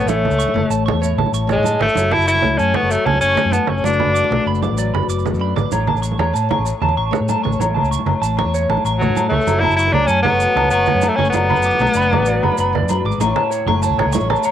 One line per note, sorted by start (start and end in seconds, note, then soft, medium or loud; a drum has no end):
0.00 0.54 A3 medium
0.00 0.70 C#4 medium
0.00 0.86 C#5 medium
0.00 maracas soft
0.06 0.26 A1 loud
0.06 1.00 A2 medium
0.06 0.70 A3 medium
0.06 0.21 C#5 medium
0.06 high conga medium
0.06 maracas medium
0.25 low conga medium
0.30 0.44 C#2 medium
0.30 low conga soft
0.30 maracas soft
0.39 0.53 C#6 medium
0.39 maracas medium
0.48 high conga medium
0.54 0.61 F#1 medium
0.54 2.43 A3 medium
0.54 low conga medium
0.70 0.89 A1 medium
0.70 1.94 C#4 medium
0.70 0.85 A5 medium
0.70 maracas medium
0.86 1.94 C#5 medium
0.86 1.00 C#6 medium
0.86 high conga medium
0.86 low conga medium
0.93 1.13 E2 medium
1.01 1.47 A2 medium
1.01 1.16 C#5 medium
1.01 maracas medium
1.17 1.23 A1 medium
1.17 1.32 A5 medium
1.17 low conga medium
1.26 high conga medium
1.26 low conga soft
1.32 1.58 A1 medium
1.32 1.48 C#6 medium
1.32 maracas medium
1.47 1.63 C#3 medium
1.47 1.64 C#5 medium
1.47 low conga medium
1.47 maracas soft
1.52 1.79 G#3 medium
1.56 1.76 A2 medium
1.63 1.79 D3 medium
1.63 1.79 A5 medium
1.63 high conga medium
1.63 maracas medium
1.79 1.87 G#1 medium
1.79 1.94 E3 medium
1.79 2.14 A3 medium
1.79 1.95 C#6 medium
1.79 low conga loud
1.89 maracas soft
1.95 2.15 F#1 medium
1.95 2.87 F#3 medium
1.95 2.11 C#5 medium
1.95 high conga loud
1.95 maracas medium
2.11 2.27 E4 loud
2.11 2.26 A5 medium
2.11 low conga medium
2.18 2.38 F#1 medium
2.18 low conga soft
2.18 maracas soft
2.27 2.59 E4 loud
2.27 2.41 C#6 medium
2.27 maracas loud
2.35 high conga medium
2.42 2.56 C#2 medium
2.42 3.35 A3 medium
2.42 2.57 C#5 medium
2.42 low conga medium
2.58 2.72 F#2 medium
2.58 2.77 C#4 medium
2.58 3.51 C#4 medium
2.58 2.73 A5 medium
2.58 maracas medium
2.74 2.92 B3 medium
2.74 3.68 A4 medium
2.74 2.89 C#6 medium
2.74 high conga medium
2.74 low conga medium
2.83 2.95 F#1 medium
2.87 3.81 F#3 medium
2.87 3.07 A3 medium
2.87 maracas medium
3.06 3.19 C#2 medium
3.06 3.20 C#4 medium
3.06 3.20 A5 medium
3.06 low conga medium
3.14 high conga medium
3.14 low conga soft
3.21 3.34 F#1 medium
3.21 3.54 C#4 loud
3.21 3.36 C#6 medium
3.21 maracas loud
3.35 3.84 A3 medium
3.35 3.52 C#5 medium
3.35 low conga medium
3.35 maracas soft
3.45 3.58 F#2 medium
3.51 3.71 B3 medium
3.51 3.82 C#4 medium
3.51 3.67 A5 medium
3.51 high conga medium
3.51 maracas medium
3.67 3.82 F#1 medium
3.67 3.86 C#4 medium
3.67 3.86 A4 medium
3.67 3.83 C#6 medium
3.67 low conga medium
3.78 maracas soft
3.84 4.03 F#1 loud
3.84 4.76 F#3 medium
3.84 4.30 A3 medium
3.84 4.47 D4 medium
3.84 4.45 D4 soft
3.84 5.71 F#4 medium
3.84 4.61 B4 medium
3.84 3.98 D5 medium
3.84 high conga medium
3.84 low conga soft
3.84 maracas medium
3.93 maracas soft
4.00 4.14 B5 medium
4.00 low conga medium
4.07 4.20 F#1 medium
4.15 4.29 D6 medium
4.15 maracas medium
4.24 high conga medium
4.31 4.37 B1 medium
4.31 5.25 A3 medium
4.31 low conga medium
4.46 4.66 F#1 medium
4.46 5.38 D4 medium
4.46 4.61 B5 medium
4.55 maracas soft
4.62 5.55 B4 medium
4.62 4.77 D6 medium
4.62 high conga loud
4.62 maracas soft
4.71 4.90 A1 medium
4.77 5.70 F#3 medium
4.77 4.93 D5 medium
4.77 maracas medium
4.94 5.00 F#1 medium
4.94 5.08 B5 medium
4.94 low conga medium
5.03 high conga medium
5.03 low conga soft
5.08 5.34 F#1 medium
5.08 5.24 D6 medium
5.08 maracas medium
5.18 low conga soft
5.18 maracas soft
5.25 6.20 A3 medium
5.25 muted clean electric guitar stroke medium
5.25 low conga medium
5.25 maracas soft
5.32 5.52 F#2 medium
5.32 low conga soft
5.32 maracas soft
5.39 5.69 D4 medium
5.39 5.55 B5 medium
5.56 5.62 G#1 medium
5.56 5.70 B4 medium
5.56 5.71 D6 medium
5.56 low conga medium
5.56 maracas soft
5.72 5.91 A1 medium
5.72 6.65 A2 medium
5.72 5.87 C#5 medium
5.72 high conga medium
5.72 low agogo medium
5.72 maracas loud
5.87 6.02 A5 medium
5.87 low conga medium
5.87 low agogo medium
5.94 6.14 A1 medium
5.94 maracas soft
6.02 6.17 C#6 medium
6.02 maracas medium
6.12 high conga medium
6.18 6.31 E2 loud
6.18 7.11 A3 medium
6.18 6.33 C#5 medium
6.18 low conga medium
6.18 low agogo medium
6.33 6.48 A2 medium
6.33 7.28 C#4 medium
6.33 6.48 A5 medium
6.33 maracas loud
6.49 7.44 C#5 medium
6.49 6.65 C#6 medium
6.49 high conga medium
6.49 low conga medium
6.49 low agogo medium
6.58 6.71 A1 medium
6.65 7.59 A2 medium
6.65 maracas medium
6.81 6.94 E2 medium
6.81 6.96 A5 medium
6.81 low conga medium
6.81 low agogo medium
6.89 high conga medium
6.89 low conga soft
6.97 7.10 A1 medium
6.97 7.12 C#6 medium
6.97 low agogo medium
7.11 8.06 A3 medium
7.11 7.27 C#5 medium
7.11 low conga medium
7.11 maracas soft
7.20 7.33 A2 medium
7.29 8.23 C#4 medium
7.29 7.43 A5 medium
7.29 high conga medium
7.29 low agogo medium
7.29 maracas medium
7.44 7.57 A1 medium
7.44 8.38 C#5 medium
7.44 7.58 C#6 medium
7.44 low conga medium
7.53 maracas soft
7.59 7.79 A1 loud
7.59 8.54 A2 medium
7.59 7.74 C#5 medium
7.59 high conga medium
7.59 low agogo medium
7.59 maracas medium
7.75 7.89 A5 medium
7.75 low conga medium
7.75 low agogo medium
7.82 7.96 C#2 medium
7.82 low conga soft
7.82 maracas soft
7.91 8.05 C#6 medium
7.91 maracas medium
7.99 high conga medium
8.06 8.12 F#1 medium
8.06 9.01 A3 medium
8.06 low conga medium
8.06 low agogo medium
8.21 8.41 A1 medium
8.21 9.14 C#4 medium
8.21 8.36 A5 medium
8.21 maracas medium
8.37 9.29 C#5 medium
8.37 8.52 C#6 medium
8.37 high conga medium
8.37 low conga medium
8.37 low agogo medium
8.45 8.65 E2 medium
8.54 9.48 A2 medium
8.54 8.68 C#5 medium
8.54 maracas medium
8.68 8.75 A1 loud
8.68 8.84 A5 medium
8.68 low conga medium
8.68 low agogo medium
8.77 high conga medium
8.77 low conga soft
8.85 9.09 A1 medium
8.85 8.99 C#6 medium
8.85 low agogo medium
8.85 maracas medium
8.98 9.28 F#3 medium
8.98 9.92 A3 medium
8.98 9.15 C#5 medium
8.98 low conga medium
8.98 maracas soft
9.08 9.27 A2 medium
9.15 9.45 C#4 medium
9.15 9.30 A5 medium
9.15 high conga medium
9.15 low agogo medium
9.15 maracas medium
9.29 9.38 C#2 medium
9.29 9.61 A3 medium
9.29 9.44 C#5 medium
9.29 9.46 C#6 medium
9.29 low conga medium
9.41 maracas soft
9.45 9.66 F#1 medium
9.45 10.40 F#3 medium
9.45 9.62 C#5 medium
9.45 high conga medium
9.45 low agogo medium
9.45 maracas medium
9.60 9.76 E4 loud
9.60 low conga medium
9.64 9.78 A5 medium
9.64 low agogo medium
9.70 9.89 F#1 medium
9.70 low conga soft
9.70 maracas soft
9.76 9.94 E4 loud
9.76 9.93 C#6 medium
9.76 maracas medium
9.87 high conga medium
9.92 10.06 C#2 loud
9.92 10.85 A3 medium
9.92 10.08 D4 loud
9.92 10.09 C#5 medium
9.92 low conga medium
9.92 low agogo medium
10.06 10.21 F#2 medium
10.06 10.22 C#4 loud
10.06 11.01 C#4 medium
10.06 10.24 A5 medium
10.06 maracas medium
10.23 10.67 B3 loud
10.23 11.17 A4 medium
10.23 10.40 C#6 medium
10.23 high conga loud
10.23 low conga loud
10.23 low agogo medium
10.31 10.45 F#1 medium
10.40 11.31 F#3 medium
10.40 maracas medium
10.56 10.69 C#2 medium
10.56 10.70 A5 medium
10.56 low conga medium
10.56 low agogo medium
10.64 high conga medium
10.64 low conga soft
10.70 10.84 F#1 medium
10.70 11.10 B3 loud
10.70 10.87 C#6 medium
10.70 low agogo medium
10.70 maracas medium
10.86 11.79 A3 medium
10.86 11.02 C#5 medium
10.86 low conga loud
10.86 maracas soft
10.95 11.08 F#2 medium
11.02 11.32 C#4 medium
11.02 11.17 A5 medium
11.02 high conga medium
11.02 low agogo medium
11.02 maracas medium
11.08 11.17 A3 medium
11.15 11.31 F#1 medium
11.15 11.29 C#4 medium
11.15 12.11 A4 medium
11.15 11.33 C#6 medium
11.15 low conga loud
11.25 maracas soft
11.30 11.53 F#1 loud
11.30 12.24 F#3 medium
11.30 12.83 B3 medium
11.30 maracas medium
11.34 11.48 D5 medium
11.34 high conga loud
11.34 low conga soft
11.34 low agogo medium
11.50 11.64 B5 medium
11.50 low conga loud
11.50 low agogo medium
11.56 11.70 F#1 medium
11.56 maracas soft
11.63 11.80 D6 medium
11.63 low conga soft
11.63 maracas medium
11.71 high conga medium
11.71 maracas soft
11.79 11.86 B1 medium
11.79 13.04 A3 medium
11.79 low conga medium
11.79 low agogo medium
11.79 maracas soft
11.87 maracas soft
11.94 12.15 F#1 medium
11.94 13.17 D4 medium
11.94 12.11 B5 medium
11.94 maracas medium
12.02 maracas soft
12.11 13.18 B4 medium
12.11 12.26 D6 medium
12.11 high conga loud
12.11 low conga loud
12.11 low agogo medium
12.19 12.38 A1 medium
12.19 low conga soft
12.25 12.72 F#3 medium
12.25 12.42 D5 medium
12.25 low conga soft
12.25 maracas medium
12.43 12.49 F#1 loud
12.43 12.57 B5 medium
12.43 low conga medium
12.43 low agogo medium
12.52 high conga medium
12.52 low conga soft
12.58 12.82 F#1 medium
12.58 12.73 B5 medium
12.58 low conga soft
12.58 low agogo medium
12.58 maracas medium
12.67 low conga soft
12.73 12.88 E3 medium
12.73 12.89 D5 medium
12.73 low conga medium
12.81 13.00 F#2 medium
12.81 low conga soft
12.89 13.05 F#3 medium
12.89 13.04 B5 medium
12.89 high conga medium
12.89 low conga soft
12.89 low agogo medium
12.89 maracas medium
13.04 13.11 G#1 medium
13.04 13.21 G#3 medium
13.04 13.20 D6 medium
13.12 low conga soft
13.12 maracas soft
13.18 13.32 A1 loud
13.18 14.14 A2 medium
13.18 14.15 C#4 medium
13.18 13.68 E4 medium
13.18 13.35 C#6 medium
13.18 high conga medium
13.18 low conga soft
13.18 low agogo medium
13.18 maracas loud
13.23 13.84 C#5 medium
13.36 13.50 A5 medium
13.36 low conga medium
13.36 low agogo medium
13.51 13.65 C#5 medium
13.51 maracas loud
13.60 low conga soft
13.66 13.86 F#1 loud
13.66 14.52 A3 medium
13.66 14.00 E4 medium
13.66 13.82 C#6 loud
13.66 high conga medium
13.66 low conga medium
13.66 low agogo medium
13.76 low conga soft
13.83 14.16 C#5 medium
13.83 13.97 A5 medium
13.83 maracas loud
13.89 13.96 C#2 medium
13.98 14.04 A1 medium
13.98 14.15 E4 medium
13.98 14.13 C#5 medium
13.98 low conga loud
13.98 low agogo medium
14.06 14.19 C#2 medium
14.13 14.52 A2 medium
14.13 14.52 C#4 medium
14.13 14.52 E4 medium
14.13 14.52 C#5 medium
14.13 14.28 C#6 loud
14.13 high conga loud
14.13 maracas loud
14.21 14.34 A1 medium
14.30 14.44 A5 medium
14.30 low conga loud
14.30 low agogo medium
14.36 maracas soft
14.43 14.52 C#5 medium
14.43 low conga soft
14.43 low agogo medium
14.43 maracas loud